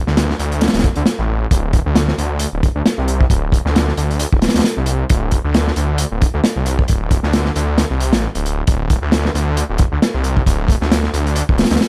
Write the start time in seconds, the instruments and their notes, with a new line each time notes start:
0.07 detuned saw bass D2, snare
0.17 snare, closed hi-hat
0.30 snare
0.39 detuned saw bass D2, closed hi-hat
0.52 closed hi-hat
0.61 snare, closed hi-hat
0.68 snare, closed hi-hat
0.73 detuned saw bass D1, snare, closed hi-hat
0.79 snare, closed hi-hat
0.84 kick, closed hi-hat
0.95 detuned saw bass D2, closed hi-hat
1.06 snare, closed hi-hat
1.19 detuned saw bass A1
1.51 detuned saw bass D1, kick, closed hi-hat
1.73 kick, closed hi-hat
1.86 detuned saw bass D2
1.95 snare, closed hi-hat
2.08 snare
2.18 detuned saw bass D2, closed hi-hat
2.39 closed hi-hat
2.53 detuned saw bass D1
2.63 kick, closed hi-hat
2.75 detuned saw bass D2
2.86 snare, closed hi-hat
2.98 detuned saw bass C2
3.08 closed hi-hat
3.21 kick
3.30 detuned saw bass D1, kick, closed hi-hat
3.52 kick, closed hi-hat
3.65 detuned saw bass D2, snare
3.76 snare, closed hi-hat
3.88 snare
3.97 detuned saw bass D2, closed hi-hat
4.10 closed hi-hat
4.19 closed hi-hat
4.32 detuned saw bass D1, kick
4.42 snare, closed hi-hat
4.48 snare, closed hi-hat
4.54 detuned saw bass D2, snare, closed hi-hat
4.59 snare, closed hi-hat
4.64 snare, closed hi-hat
4.77 detuned saw bass C2
4.86 closed hi-hat
5.09 detuned saw bass D1, kick, closed hi-hat
5.31 kick, closed hi-hat
5.44 detuned saw bass D2
5.54 snare, closed hi-hat
5.67 snare
5.76 detuned saw bass D2, closed hi-hat
5.98 closed hi-hat
6.11 detuned saw bass D1
6.22 kick, closed hi-hat
6.34 detuned saw bass D2
6.44 snare, closed hi-hat
6.56 detuned saw bass C2
6.66 closed hi-hat
6.79 kick
6.88 detuned saw bass D1, kick, closed hi-hat
7.11 kick, closed hi-hat
7.23 detuned saw bass D2, snare
7.33 snare, closed hi-hat
7.45 snare
7.56 detuned saw bass D2, closed hi-hat
7.78 snare, closed hi-hat
7.90 detuned saw bass C2
8.00 closed hi-hat
8.13 detuned saw bass A1, snare, closed hi-hat
8.35 detuned saw bass D1, closed hi-hat
8.46 closed hi-hat
8.67 detuned saw bass D1, kick, closed hi-hat
8.90 kick, closed hi-hat
9.02 detuned saw bass D2
9.12 snare, closed hi-hat
9.25 snare
9.34 detuned saw bass D2, closed hi-hat
9.57 closed hi-hat
9.69 detuned saw bass D1
9.78 kick, closed hi-hat
9.92 detuned saw bass D2
10.02 snare, closed hi-hat
10.14 detuned saw bass C2
10.24 closed hi-hat
10.37 kick
10.46 detuned saw bass D1, kick, closed hi-hat
10.68 kick, closed hi-hat
10.81 detuned saw bass D2, snare
10.92 snare, closed hi-hat
11.03 snare
11.13 detuned saw bass D2, closed hi-hat
11.27 closed hi-hat
11.36 closed hi-hat
11.49 detuned saw bass D1, kick
11.58 snare, closed hi-hat
11.64 snare, closed hi-hat
11.70 detuned saw bass D2, snare, closed hi-hat
11.76 snare, closed hi-hat
11.81 snare, closed hi-hat